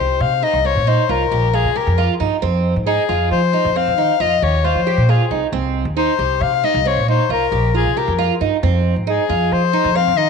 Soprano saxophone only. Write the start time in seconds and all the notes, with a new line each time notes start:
Already playing: C5
0.21 F5
0.44 D#5
0.66 C#5
0.89 C5
1.11 A#4
1.55 G#4
1.76 A#4
2.86 G#4
3.32 C5
3.77 F5
4.21 D#5
4.43 C#5
4.65 C5
5.09 G#4
5.97 C5
6.42 F5
6.65 D#5
6.88 C#5
7.09 C5
7.32 A#4
7.76 G#4
7.97 A#4
9.09 G#4
9.53 C5
9.96 F5
10.17 D#5